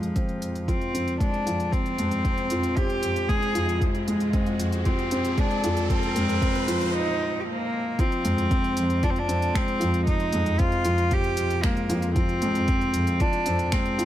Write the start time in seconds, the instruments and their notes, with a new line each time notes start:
Already playing: cello F3, felt piano F3 G#3, riser
0.03 double bass section F2, closed hi-hat
0.16 felt piano C4, kick, closed hi-hat
0.29 closed hi-hat
0.41 double bass section F2, closed hi-hat
0.55 closed hi-hat
0.68 cello C4, felt piano F4, kick, closed hi-hat
0.81 closed hi-hat
0.94 double bass section F2, felt piano C4, closed hi-hat
1.08 closed hi-hat
1.20 felt piano G#3, cello D4, kick, closed hi-hat
1.34 closed hi-hat
1.46 double bass section F2, felt piano F3, closed hi-hat
1.60 closed hi-hat
1.72 cello C4, kick, closed hi-hat
1.86 closed hi-hat
1.98 double bass section F2, felt piano G#3, closed hi-hat
2.11 double bass section F2, closed hi-hat
2.25 felt piano C4, kick, closed hi-hat
2.38 closed hi-hat
2.50 double bass section F2, felt piano F4, closed hi-hat
2.63 closed hi-hat
2.77 felt piano C4, cello G4, kick, closed hi-hat
2.90 closed hi-hat
3.03 double bass section F2, closed hi-hat
3.16 closed hi-hat
3.28 felt piano G#3, cello G#4, kick, closed hi-hat
3.42 closed hi-hat
3.55 double bass section F2, felt piano F3, closed hi-hat
3.69 closed hi-hat
3.81 felt piano F3, cello G#3, kick, closed hi-hat
3.95 closed hi-hat
4.07 double bass section F2, felt piano G#3, closed hi-hat
4.20 double bass section F2, closed hi-hat
4.33 felt piano C4, kick, closed hi-hat
4.46 closed hi-hat
4.59 double bass section F2, closed hi-hat
4.72 closed hi-hat
4.85 cello C4, felt piano F4, kick, closed hi-hat
4.99 closed hi-hat
5.11 double bass section F2, felt piano C4, closed hi-hat
5.25 closed hi-hat
5.38 felt piano G#3, cello D4, kick, closed hi-hat
5.51 closed hi-hat
5.64 double bass section F2, felt piano F3, closed hi-hat
5.77 closed hi-hat
5.90 cello C4, kick, closed hi-hat
6.03 closed hi-hat
6.16 double bass section F2, felt piano G#3, closed hi-hat
6.29 double bass section F2, closed hi-hat
6.41 felt piano C4, kick, closed hi-hat
6.55 closed hi-hat
6.68 double bass section F2, felt piano F4, closed hi-hat
6.81 closed hi-hat
6.95 cello D#4
7.40 cello G4
7.47 cello A#3
7.99 felt piano F3, cello C4, kick, closed hi-hat
8.12 closed hi-hat
8.24 double bass section F2, felt piano G#3, closed hi-hat
8.38 double bass section F2, closed hi-hat
8.51 felt piano C4, kick, closed hi-hat
8.64 closed hi-hat
8.77 double bass section F2, closed hi-hat
8.90 closed hi-hat
9.03 cello D4, felt piano F4, kick, closed hi-hat
9.10 cello C4
9.16 cello D4, closed hi-hat
9.28 double bass section F2, felt piano C4, closed hi-hat
9.42 closed hi-hat
9.54 felt piano G#3, cello C4, finger snap, kick, closed hi-hat
9.68 closed hi-hat
9.80 double bass section F2, felt piano F3, closed hi-hat
9.94 closed hi-hat
10.07 cello D#4, kick, closed hi-hat
10.20 closed hi-hat
10.32 double bass section F2, felt piano G#3, closed hi-hat
10.46 double bass section F2, closed hi-hat
10.59 felt piano C4, cello F4, kick, closed hi-hat
10.72 closed hi-hat
10.85 double bass section F2, felt piano F4, closed hi-hat
10.98 closed hi-hat
11.11 felt piano C4, cello G4, kick, closed hi-hat
11.24 closed hi-hat
11.37 double bass section F2, closed hi-hat
11.50 closed hi-hat
11.64 felt piano G#3, cello A#3, finger snap, kick, closed hi-hat
11.77 closed hi-hat
11.90 double bass section F2, felt piano F3, closed hi-hat
12.02 closed hi-hat
12.15 felt piano F3, cello C4, kick, closed hi-hat
12.29 closed hi-hat
12.42 double bass section F2, felt piano G#3, closed hi-hat
12.54 double bass section F2, closed hi-hat
12.68 felt piano C4, kick, closed hi-hat
12.81 closed hi-hat
12.94 double bass section F2, closed hi-hat
13.07 closed hi-hat
13.20 cello D4, felt piano F4, kick, closed hi-hat
13.33 closed hi-hat
13.46 double bass section F2, felt piano C4, closed hi-hat
13.59 closed hi-hat
13.72 felt piano G#3, cello C4, finger snap, kick, closed hi-hat
13.85 closed hi-hat
13.99 double bass section F2, felt piano F3, closed hi-hat